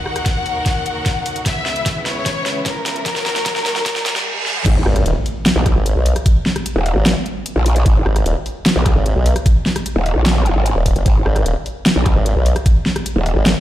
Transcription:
Already playing: D#2 D#3 F#4 A#4 F#5, riser
0.06 cross-stick
0.16 cross-stick, closed hi-hat
0.26 kick, snare, closed hi-hat
0.46 open hi-hat
0.66 kick, snare, closed hi-hat
0.86 closed hi-hat
1.06 kick, snare, closed hi-hat
1.26 open hi-hat
1.36 closed hi-hat
1.46 C#2 C#3 B3 E4 E5, kick, snare, closed hi-hat
1.66 snare
1.76 closed hi-hat
1.86 kick, snare, closed hi-hat
2.06 C#5, snare, open hi-hat
2.26 kick, snare, closed hi-hat
2.46 snare, closed hi-hat
2.66 A#4, kick, snare, closed hi-hat
2.86 snare, open hi-hat
2.96 closed hi-hat
3.06 D#2 D#3 F#4 A#4, kick, snare, closed hi-hat
3.16 snare
3.26 snare
3.36 snare, closed hi-hat
3.46 kick, snare, closed hi-hat
3.56 snare
3.66 snare, open hi-hat
3.76 snare
3.86 kick, snare, closed hi-hat, reverse cymbal
3.96 snare
4.06 snare, closed hi-hat
4.16 snare
4.46 snare
4.56 mid tom
4.66 G#1, kick, closed hi-hat, crash, impact
4.86 G#1, cross-stick
4.96 cross-stick, closed hi-hat
5.06 D#1, closed hi-hat
5.26 open hi-hat
5.46 snare, closed hi-hat
5.56 B1
5.66 kick, cross-stick, closed hi-hat
5.76 G#1
5.86 closed hi-hat
5.96 B1
6.06 open hi-hat
6.16 cross-stick, closed hi-hat
6.26 kick, closed hi-hat
6.46 snare
6.56 cross-stick, closed hi-hat
6.66 closed hi-hat
6.76 D#1
6.86 open hi-hat
6.96 G#1
7.06 snare, closed hi-hat
7.26 closed hi-hat
7.46 closed hi-hat
7.56 A#1
7.66 open hi-hat
7.76 closed hi-hat
7.86 G#1, kick, closed hi-hat
8.06 G#1, cross-stick
8.16 cross-stick, closed hi-hat
8.26 D#1, closed hi-hat
8.46 open hi-hat
8.66 snare, closed hi-hat
8.76 B1
8.86 kick, cross-stick, closed hi-hat
8.96 G#1
9.06 closed hi-hat
9.16 B1
9.26 open hi-hat
9.36 cross-stick, closed hi-hat
9.46 kick, closed hi-hat
9.66 snare
9.76 cross-stick, closed hi-hat
9.86 closed hi-hat
9.96 D#1
10.06 open hi-hat
10.16 A#1
10.26 snare, closed hi-hat
10.46 closed hi-hat
10.56 G#1
10.66 closed hi-hat
10.76 D#1
10.86 kick, open hi-hat
10.96 F#1, closed hi-hat
11.06 G#1, kick, closed hi-hat
11.26 G#1, cross-stick
11.36 cross-stick, closed hi-hat
11.46 D#1, closed hi-hat
11.66 open hi-hat
11.86 snare, closed hi-hat
11.96 B1
12.06 kick, cross-stick, closed hi-hat
12.16 G#1
12.26 closed hi-hat
12.36 B1
12.46 open hi-hat
12.56 cross-stick, closed hi-hat
12.66 kick, closed hi-hat
12.86 snare
12.96 cross-stick, closed hi-hat
13.06 closed hi-hat
13.16 D#1
13.26 open hi-hat
13.36 G#1
13.46 snare, closed hi-hat

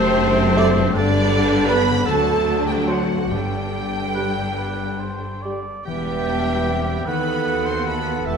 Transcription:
Already playing: F#1 F#2 C3 A3 C4 D4 A4 C5
0.57 A3 D5
0.66 C5
0.76 G2 B4
0.80 B3 C5
0.85 D4
0.89 G4
0.94 G1 G2 D3 G3 B3 D4 D5
1.66 G3 B3 B4 B5
1.89 D3
1.93 C4
1.98 D4
2.02 F#4 A4 A5
2.07 D2 D3 F#3 A3 C4 D4 A5
2.66 G3 G4 G5
2.86 F#3 F#4 C5 F#5
3.13 G2
3.17 B3
3.21 D4
3.26 G4 G5
3.31 G1 G2 D3 G3 B3 D4 G4 G5
4.14 G3 B4
4.57 B4
4.99 C5
5.42 G3 D5
5.85 E1 E2 E3 G3 B3 G4 B4 E5 G5
6.27 D4 E4
6.68 C4 E4 G4
7.06 D#2 D#3 B3 F#4 A4 B4 F#5 B5
7.47 B3
7.66 C4 C5 C6
7.86 B3 F#4 A4 B4 B5
8.24 E1 E2 E3 A3 B3 E4 G4 A4 E5 A5

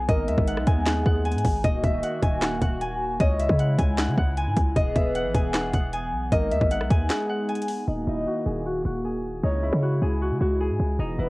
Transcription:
Already playing: E5 F#5 G#5
0.08 G#1 G#3 B3 D#4 A#4 D#5, kick, closed hi-hat
0.28 D#2 E5, closed hi-hat
0.38 G#1, kick
0.47 F#5, closed hi-hat
0.57 B1, cross-stick
0.67 D#2 G#5, kick, closed hi-hat
0.86 G#4 F#5, snare, clap, closed hi-hat
1.06 D#2 F#5, kick
1.25 G#5, closed hi-hat
1.32 G#2, closed hi-hat
1.38 closed hi-hat
1.45 G#1, kick, open hi-hat
1.64 D#1 D#3 A#3 F#4 D#5, kick, closed hi-hat
1.84 D#1 D#5 E5, kick, closed hi-hat
2.03 F#5, closed hi-hat
2.23 D#1 G#5, kick, closed hi-hat
2.42 F#5, cross-stick, snare, clap, closed hi-hat
2.62 D#1 F#5, kick, closed hi-hat
2.81 G#5, closed hi-hat
3.20 C#2 C#3 G#3 E4 C#5 D#5, kick, closed hi-hat
3.40 E5, closed hi-hat
3.49 C#3, kick
3.59 F#5, closed hi-hat
3.79 C#2 G#5, kick, closed hi-hat
3.98 F#5, cross-stick, snare, clap, closed hi-hat
4.08 C#3
4.18 C#2 F#5, kick
4.37 G#5, closed hi-hat
4.47 G#2
4.56 C#2, kick, closed hi-hat
4.76 E1 E3 B3 G#4 D#5, kick, closed hi-hat
4.95 E1 B4 E5, kick, closed hi-hat
5.15 F#5, closed hi-hat
5.25 G#1
5.34 E1 G#5, kick, closed hi-hat
5.54 F#5, cross-stick, snare, clap, closed hi-hat
5.73 E1 F#5, kick, closed hi-hat
5.93 G#5, closed hi-hat
6.12 B1
6.32 G#1 G#3 B3 D#4 A#4 D#5, kick, closed hi-hat
6.51 D#2 E5, closed hi-hat
6.61 G#1, kick
6.71 F#5, closed hi-hat
6.81 B1, cross-stick
6.90 D#2 G#5, kick, closed hi-hat
7.10 G#4 F#5, snare, clap, closed hi-hat
7.29 F#5
7.49 G#5, closed hi-hat
7.55 closed hi-hat
7.62 closed hi-hat
7.68 open hi-hat
7.88 D#1 D#3 A#3 D#4 F#4
8.07 D#1 E4 D#5
8.27 F#4
8.46 D#1 G#4
8.66 F#4
8.85 D#1 F#4
9.05 G#4
9.43 C#2 C#3 G#3 D#4 E4 C#5
9.63 E4
9.73 C#3
9.82 F#4
10.02 C#2 G#4
10.21 F#4
10.31 C#3
10.41 C#2 F#4
10.60 G#4
10.70 G#2
10.80 C#2
10.99 E1 E3 B3 D#4 G#4
11.19 E1 E4 B4

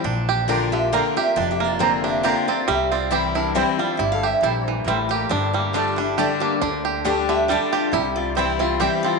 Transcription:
0.04 A#1 A#2 D4
0.29 G4
0.48 D3 A#3 C4 D4 F4 A#4 D5 G5 A#5
0.72 D3 C4 F4 G4 E5
0.92 D3 A#3 C4 F4 A#4 D5 F5 A#5
1.16 C4 F4 G4 E5
1.36 F1 F2 D4 F4 D5
1.51 G4 E5
1.60 A#3
1.64 F4 D5
1.79 D3 A#3 C4 F4 C5 D5 A#5
2.04 D4 G4 E5
2.23 D3 A#3 C4 F4 G4 A#4 D5 F5 A#5
2.48 C4 F4 D5
2.68 C2 C3 G3 G4 E5
2.92 C4 F4 D5
3.11 E3 G3 C4 E4 G4 C5 G5
3.35 D4 E4 A#4
3.55 E3 G3 C4 E4 C5 G5
3.79 G3 C4 E4 F4 D5
3.97 G1 G2 E4 G4 E5
4.12 A4 F5
4.23 G4 E5
4.30 G4
4.41 A#1 A#2 C4 E4 G4 C5 D5 G5
4.64 E3 E4 C5
4.85 A1 A2 G3 C4 E4 A#4 C5 G5
5.09 A#3 G4
5.29 G1 G2 D4 A4
5.53 G3 A#3 G4
5.73 D3 G3 A3 D4 F4 G4 D5 A5
5.96 G3 D4 E4 G4
6.17 D3 G3 A3 D4 G4 D5 A5
6.40 A#3 D4 G4
6.61 D2 D3 D4
6.85 G4
7.05 D3 G3 A3 D4 G4 D5 A5
7.29 D3 G4 E5
7.48 D3 G3 A3 D4 G4 D5 A5
7.72 F4 G4 D5
7.91 C2 C3 E4 G4 E5
8.16 F4 D5
8.35 E3 G3 C4 E4 C5 G5
8.59 E4 F4 D5
8.79 E3 G3 C4 E4 G4 C5 E5 G5
9.03 C4 F4 D5

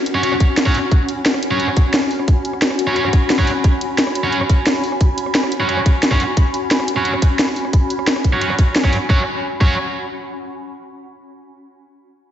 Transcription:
Already playing: C#4 F#4 G#5 B5
0.06 closed hi-hat
0.14 C#4 F#4 C#5
0.23 C#4 F#4 C#5, closed hi-hat
0.32 cross-stick
0.40 kick, closed hi-hat
0.57 snare, closed hi-hat
0.66 C#4 F#4 C#5, kick, cross-stick
0.74 open hi-hat
0.91 kick, closed hi-hat
1.09 closed hi-hat
1.26 snare, closed hi-hat
1.34 cross-stick
1.43 closed hi-hat
1.51 C#4 F#4 C#5
1.60 closed hi-hat
1.68 cross-stick
1.77 kick, closed hi-hat
1.94 snare, closed hi-hat
2.11 open hi-hat
2.19 cross-stick
2.28 kick, closed hi-hat
2.45 closed hi-hat
2.53 cross-stick
2.62 snare, closed hi-hat
2.70 cross-stick
2.79 closed hi-hat
2.87 C#4 F#4 C#5
2.96 C#4 F#4 C#5, closed hi-hat
3.05 cross-stick
3.13 kick, closed hi-hat
3.30 snare, closed hi-hat
3.38 C#4 F#4 C#5, kick, cross-stick
3.47 open hi-hat
3.64 kick, closed hi-hat
3.81 closed hi-hat
3.98 snare, closed hi-hat
4.07 cross-stick
4.15 closed hi-hat
4.23 C#4 F#4 C#5
4.32 closed hi-hat
4.41 cross-stick
4.50 kick, closed hi-hat
4.67 snare, closed hi-hat
4.84 open hi-hat
4.92 cross-stick
5.01 kick, closed hi-hat
5.18 closed hi-hat
5.26 cross-stick
5.35 snare, closed hi-hat
5.43 cross-stick
5.52 closed hi-hat
5.60 C#4 F#4 C#5
5.69 C#4 F#4 C#5, closed hi-hat
5.77 cross-stick
5.86 kick, closed hi-hat
6.03 snare, closed hi-hat
6.11 C#4 F#4 C#5, kick, cross-stick
6.20 open hi-hat
6.37 kick, closed hi-hat
6.54 closed hi-hat
6.71 snare, closed hi-hat
6.80 cross-stick
6.88 closed hi-hat
6.96 C#4 F#4 C#5
7.05 closed hi-hat
7.14 cross-stick
7.22 kick, closed hi-hat
7.39 snare, closed hi-hat
7.56 open hi-hat
7.65 cross-stick
7.73 kick, closed hi-hat
7.90 closed hi-hat
7.99 cross-stick
8.07 snare, closed hi-hat
8.16 cross-stick
8.24 kick, closed hi-hat
8.33 C#4 F#4 C#5
8.41 C#4 F#4 C#5, closed hi-hat
8.50 cross-stick
8.59 kick, closed hi-hat
8.76 snare, closed hi-hat
8.84 C#4 F#4 C#5, kick, cross-stick
8.93 open hi-hat
9.09 C#4 F#4 C#5, kick
9.61 C#4 F#4 C#5, kick

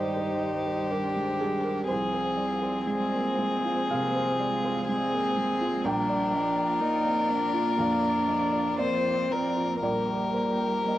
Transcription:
Already playing: G2 D#3 G3 G#3 D#4 G4 C5 D5
0.17 C5
0.41 D#3 D5
0.67 C5
0.91 G3 D4 A#4
1.16 G#3
1.40 G3 G#4
1.64 G4 A#4
1.88 C2 F3 C4 F4 G#4 C5
2.14 C5
2.37 G3 D5
2.62 C5
2.86 G#3 G#4
3.13 A#3
3.38 G#3
3.65 F4
3.90 C3 A#3 F5
4.16 C5
4.40 G#3 D5
4.65 C5
4.88 G#3 C4 G#4
5.13 A#3
5.37 G#3
5.61 F4
5.84 A#1 G3 A#3 D4 F4 A#4 D5 G5
6.10 D5
6.33 F3 D#5
6.57 D5
6.80 A#3 D#4
7.05 C4
7.30 A#3 D4
7.54 F4
7.78 F2 A#3 D4 F5
8.03 D5
8.27 F3 D#5
8.53 D5
8.79 A#3 C4 C5 D5
9.05 C4
9.31 A#3 A#4
9.56 F4
9.82 A#1 G3 A#3 G4 A#4 D5
10.09 A#4
10.34 C5
10.60 A#4
10.86 A#3 D#5

